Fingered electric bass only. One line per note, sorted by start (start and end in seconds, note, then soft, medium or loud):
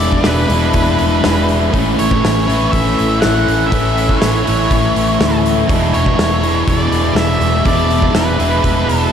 0.00 0.18 E1 loud
0.26 0.47 E1 medium
0.49 0.71 E1 medium
0.74 0.96 E1 medium
1.01 1.22 E1 medium
1.25 1.68 E1 medium
1.74 1.95 A1 medium
2.00 2.21 A1 medium
2.25 2.67 A1 medium
2.73 2.94 A1 medium
3.00 3.20 A1 medium
3.25 3.45 A1 medium
3.48 3.69 A1 medium
3.72 4.15 A1 medium
4.22 4.43 A1 medium
4.48 4.69 A1 medium
4.72 4.93 A1 medium
4.96 5.17 A1 medium
5.20 5.63 D2 medium
5.70 5.91 E1 medium
5.95 6.16 E1 medium
6.19 6.62 E1 medium
6.68 6.89 E1 medium
6.91 7.13 E1 medium
7.15 7.37 E1 medium
7.40 7.62 E1 medium
7.65 8.09 E1 loud
8.15 8.37 E1 medium
8.40 8.62 E1 medium
8.64 8.86 E1 medium
8.89 9.11 E1 medium